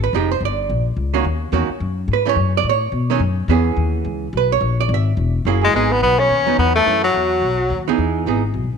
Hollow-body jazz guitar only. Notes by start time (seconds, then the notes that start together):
0.04 B4
0.14 F3 G#3 D#4 G4
0.32 C5
0.45 D5
1.14 D#3 A#3 C#4 F#4
1.53 D#3 A#3 C#4 F#4
2.13 B4
2.25 E3 A3 C#4 C#5
2.57 D5
2.69 C#5
3.10 D#3 A3 C#4
3.49 E3 B3 C#4 G#4
4.37 B4
4.52 C#5
4.80 D5
4.94 E5
5.47 F#3 A#3 E4 G#4
5.74 F#3 B3 D#4
6.47 F#3 B3 D#4
6.86 E3 A3 C#4
7.88 E3 B3 D#4 G#4
8.27 E3 B3 D#4 G#4